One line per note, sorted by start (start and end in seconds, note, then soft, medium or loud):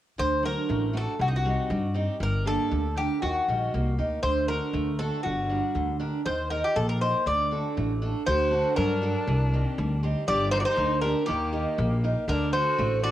0.18 0.54 D2 medium
0.18 0.67 D3 medium
0.18 0.42 C5 loud
0.42 0.83 F#3 soft
0.42 0.84 D4 soft
0.42 0.84 F#4 soft
0.42 0.97 A#4 medium
0.69 1.05 A1 loud
0.69 0.92 A3 medium
0.93 1.14 A3 soft
0.93 1.14 D4 soft
0.93 1.15 F#4 medium
0.93 1.19 A4 medium
1.19 1.55 C2 medium
1.19 1.69 C3 medium
1.19 1.27 F#4 medium
1.28 1.34 D#4 medium
1.36 1.93 F#4 medium
1.45 1.70 G3 soft
1.45 1.85 C4 soft
1.45 1.86 D#4 soft
1.70 2.06 G2 loud
1.70 2.19 G3 medium
1.94 2.15 C4 soft
1.94 2.15 D#4 soft
1.94 2.16 G4 medium
2.20 2.56 G1 medium
2.20 2.70 G3 medium
2.20 2.45 A#4 medium
2.45 2.86 A#3 soft
2.45 2.86 D4 soft
2.45 2.86 G4 soft
2.45 2.99 A4 medium
2.71 3.07 D2 medium
2.71 3.20 D3 medium
2.96 3.17 D4 medium
2.96 3.17 G4 medium
2.96 3.22 G4 medium
2.96 3.17 A#4 soft
3.22 3.40 D#2 loud
3.22 3.71 D#3 medium
3.22 3.94 F#4 medium
3.48 3.71 A#1 medium
3.48 3.89 G3 soft
3.48 3.88 D#4 medium
3.48 3.89 A#4 medium
3.74 3.96 C2 medium
3.74 4.22 A#3 medium
3.98 4.21 D2 medium
3.98 4.19 D#4 soft
3.98 4.19 G4 soft
3.98 4.19 A#4 soft
4.23 4.58 D2 medium
4.23 4.72 D3 medium
4.23 4.48 C5 medium
4.48 4.90 D4 soft
4.48 4.90 F#4 soft
4.48 4.99 A#4 medium
4.74 5.09 D2 medium
4.74 5.23 A3 medium
4.99 5.19 D4 medium
4.99 5.19 F#4 soft
4.99 5.25 A4 medium
4.99 5.20 A4 medium
5.23 5.60 G1 medium
5.23 5.49 G3 medium
5.23 5.95 F#4 medium
5.49 5.90 G3 soft
5.49 5.90 D4 soft
5.49 5.90 A#4 soft
5.75 6.10 D2 medium
5.75 6.24 D3 medium
6.00 6.20 D4 medium
6.00 6.20 G4 soft
6.00 6.20 A#4 medium
6.26 6.61 D#2 medium
6.26 6.74 D#3 medium
6.26 6.49 C5 medium
6.50 6.91 D#4 soft
6.50 6.91 G4 soft
6.50 6.62 A#4 medium
6.50 6.91 A#4 soft
6.64 6.75 G4 medium
6.76 7.11 A#1 medium
6.76 7.25 A#3 medium
6.76 6.87 A4 medium
6.89 7.00 A#4 medium
7.01 7.21 D#4 soft
7.01 7.21 G4 soft
7.01 7.22 A#4 medium
7.01 7.26 C5 medium
7.26 7.61 D2 medium
7.26 7.75 D3 medium
7.26 7.98 D5 medium
7.51 7.91 D4 soft
7.51 7.92 F#4 soft
7.51 7.92 A4 medium
7.77 8.12 A1 loud
7.77 8.25 A3 medium
8.02 8.22 D4 medium
8.02 8.22 F#4 soft
8.02 8.22 A4 medium
8.26 8.62 D2 loud
8.26 8.76 D3 medium
8.26 8.74 F#4 medium
8.26 8.76 C5 medium
8.51 8.91 D4 soft
8.51 8.92 F#4 soft
8.51 8.92 A4 soft
8.76 9.12 G2 loud
8.76 9.26 F#3 medium
8.76 9.99 D4 medium
8.76 9.98 A#4 medium
9.02 9.22 D4 medium
9.02 9.22 F#4 soft
9.02 9.23 A4 medium
9.27 9.62 C2 loud
9.27 9.76 C3 medium
9.53 9.93 D#3 soft
9.53 9.93 C4 soft
9.53 9.94 G4 medium
9.78 10.13 D2 loud
9.78 10.27 G3 medium
10.03 10.23 C4 medium
10.03 10.23 D#4 soft
10.03 10.23 G4 medium
10.28 10.63 G1 medium
10.28 10.76 G3 medium
10.28 10.51 G4 medium
10.28 10.51 D5 loud
10.51 10.59 D#4 medium
10.51 10.94 G4 soft
10.51 10.94 A#4 medium
10.51 10.59 C5 loud
10.51 10.93 D5 soft
10.60 10.65 F#4 medium
10.60 10.65 D5 medium
10.65 11.00 D#4 medium
10.65 11.01 C5 loud
10.77 11.13 D2 loud
10.77 11.27 D3 medium
11.01 11.26 D4 medium
11.01 11.23 D4 medium
11.01 11.23 G4 soft
11.01 11.25 A#4 medium
11.01 11.23 A#4 medium
11.26 11.64 D#2 medium
11.26 11.77 D#3 medium
11.26 11.98 A#3 medium
11.26 11.98 G4 medium
11.53 11.93 D#4 medium
11.53 11.93 G4 soft
11.53 11.93 A#4 soft
11.78 12.14 A#1 loud
11.78 12.27 A#3 medium
12.04 12.24 D#4 soft
12.04 12.24 G4 soft
12.04 12.24 A#4 medium
12.28 12.63 D2 loud
12.28 12.77 D3 medium
12.28 12.52 D4 medium
12.28 12.52 A#4 medium
12.53 12.93 D4 soft
12.53 12.94 F#4 soft
12.53 13.01 F#4 medium
12.53 12.94 A4 soft
12.53 13.03 C5 medium
12.78 13.11 A1 loud
12.78 13.11 A3 medium
13.03 13.11 D4 medium
13.03 13.11 F#4 medium
13.03 13.11 F#4 soft
13.03 13.11 A4 medium
13.03 13.11 D5 medium